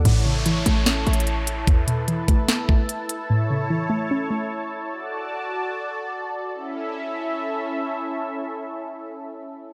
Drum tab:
HH |x-----x--x--x--xxxx--x--|x--x--x--x--x-----x--x--|------------------------|------------------------|
SD |------------o-----------|------------o-----------|------------------------|------------------------|
BD |------------------------|o--------o-----o--------|------------------------|------------------------|

HH |------------------------|------------------------|
SD |------------------------|------------------------|
BD |------------------------|------------------------|